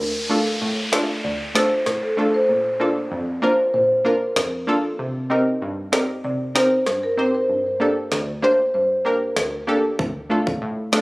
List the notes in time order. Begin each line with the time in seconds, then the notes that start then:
0.00 D2, downlifter
0.29 A3 D4 F4 A4 F5
0.61 A2
0.92 A3 D4 F4 A4 D5, snare
1.24 D2 D5
1.55 A3 D4 F4 A4 C5, snare
1.86 A2, cross-stick, snare
2.03 A4
2.17 A3 D4 F4 A4
2.34 C5
2.49 A#2
2.80 A#3 D4 F4 A4 D5
3.12 F2
3.42 A#3 D4 F4 A#4 C5
3.74 A#2 C5
4.04 A#3 D4 F4 A#4
4.36 F2, cross-stick, snare
4.67 A#3 D4 F4 A4
4.99 C3
5.30 C4 D#4 G4 A#4 D#5
5.62 G2
5.92 C4 D#4 G4 A#4 D5, snare
6.24 C3 D5
6.55 C4 D#4 G4 A#4 C5, snare
6.86 G2, cross-stick, snare
7.03 A#4
7.17 C4 D#4 G4 C5
7.35 C5
7.49 G2
7.80 A#3 D4 G4 A4 D5
8.12 D2, snare
8.42 A#3 D4 G4 C5
8.74 G2 C5
9.05 A#3 D4 G4 A#4
9.36 D2, cross-stick, snare
9.67 A#3 D4 G4 A4
9.99 D2, kick
10.30 A3 D4 F4 A4 F5
10.47 kick
10.62 A2
10.92 A3 D4 F4 A4 D5, snare